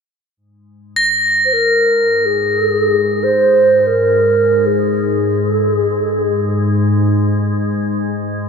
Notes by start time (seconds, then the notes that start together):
0.37 G#2
0.96 A#6
1.45 C5
1.53 A#4
2.25 G#4
3.23 C5
3.80 C5
3.86 A#4
4.66 G#4
5.50 A4
5.73 G#4
5.98 A4
6.20 G#4